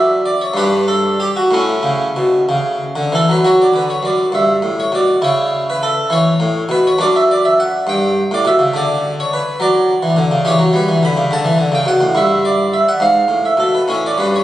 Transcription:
Already playing: F#2 E5
0.26 D5
0.41 C#5
0.54 G2 D4 G4 B4
0.88 A4
1.20 G4
1.36 F#4
1.51 A2 A3 C#4 E4
1.83 C#3
2.16 B2
2.49 C#3
2.96 D3
3.12 E3 A4
3.29 F#3 B4
3.45 F#3 F#4 C#5
3.62 D5
3.74 D3 B4
3.90 C#5
4.03 F#2 D5
4.32 G2 E5
4.62 A2
4.80 C#5
4.92 B2 D5
5.22 C#3 E4 C#5
5.70 B4
5.83 A4
6.10 E3 C#5
6.40 A2
6.69 B2 B4
6.87 C#5
6.98 F#2 D4 D5
7.16 E5
7.31 D5
7.45 E5
7.60 F#5
7.87 G2 G5
8.31 A2 D5
8.45 B2 E5
8.59 C#3
8.74 D3 D4 D5
9.20 C#5
9.33 B4
9.60 F#3 D5
10.03 E3
10.16 D3
10.31 C#3
10.45 E3 G4 C#5
10.59 F#3
10.73 G3 B4
10.88 E3
11.03 D3 B5
11.17 C#3
11.31 D3 A5
11.45 E3
11.58 D3
11.72 C#3 G5
11.86 B2 F#5
12.01 A2
12.15 G2 E4 E5
12.45 D5
12.74 E5
12.89 F#5
13.00 G#2 F5
13.28 A2
13.45 E5
13.57 B2 A4
13.75 B4
13.88 A2 C#4 C#5
14.06 D5
14.18 G2 B4
14.36 C#5

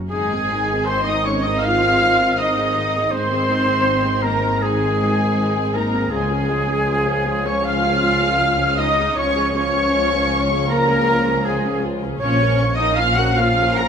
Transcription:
0.10 G#1 D#3 G#3 C4 D#4 G#4 G#5
0.32 C4 G#4
0.52 G#3 D#4
0.72 C4 G#4
0.85 C4 C5 C6
0.90 G#3 D#4
1.05 C4 D#4 G#4 D#5 D#6
1.25 G#3 C#4 D#4 C#5 C#6
1.42 D#4 D#5 D#6
1.46 C4 G#4 D#5
1.59 F5
1.63 G#3 D#4 F4 F5 F6
1.82 C4 G#4
2.00 G#3 D#4
2.19 C4 G#4
2.36 G#3 D#4 D#5 D#6
2.56 C4 G#4
2.76 G#3 D#4
2.95 C4 G#4
3.11 G#1 D#3 G#3 C4 D#4 C5 C6
3.30 C4 G#4
3.49 G#3 D#4
3.67 C4 G#4
3.85 G#3 D#4
4.03 C4 G#4
4.22 G#3 A#3 D#4 A#4
4.27 A#5
4.42 C4 G#4
4.62 G#3 D#4 G#4 G#5
4.81 C4 G#4
5.01 G#3 D#4
5.20 C4 G#4
5.39 G#3 D#4
5.56 C4 G#4
5.74 G#3 A#3 D#4 A#4 A#5
5.92 C4 G#4
6.11 C#2 F3 G#3 C#4 F4 G#4 G#5
6.30 C#4 G#4
6.49 G#3 F4
6.68 C#4 G#4
6.87 G#3 F4
7.05 C#4 G#4
7.25 G#3 F4
7.44 C#4 G#4 C#5 C#6
7.64 G#3 F4 F5
7.68 F6
7.83 C#4 G#4
8.01 G#3 F4
8.22 C#4 G#4
8.40 G#3 F4
8.57 C#4 G#4
8.77 G#3 D#4 F4 D#5 D#6
8.98 C#4 G#4
9.14 C#2 F3 G#3 C#4 F4 C#5 C#6
9.19 C#4
9.35 C#4 G#4
9.53 G#3 C#4 F4 C#5 C#6
9.74 C#4 G#4
9.93 G#3 F4
10.12 C#4 G#4
10.31 G#3 F4
10.50 C#4 G#4
10.69 G#3 A#3 F4 A#4 A#5
10.87 C#4 G#4
11.07 G#3 F4
11.28 C#4 G#4
11.45 G#3 F4 G#4 G#5
11.66 C#4 G#4
11.84 G#3 F4
12.03 C#4 G#4
12.19 A#1 F3 A#3 C#4 F4 C#5 C#6
12.41 C#4 A#4
12.61 A#3 F4
12.74 D#5
12.79 C#4 D#4 A#4 D#6
12.95 A#3 F4 F5 F6
13.15 C#4 F#4 A#4 F#5 F#6
13.19 F#5
13.37 A#3 F4 F5 F6
13.59 C#4 A#4
13.78 A#3 F4 A#4 A#5 A#6

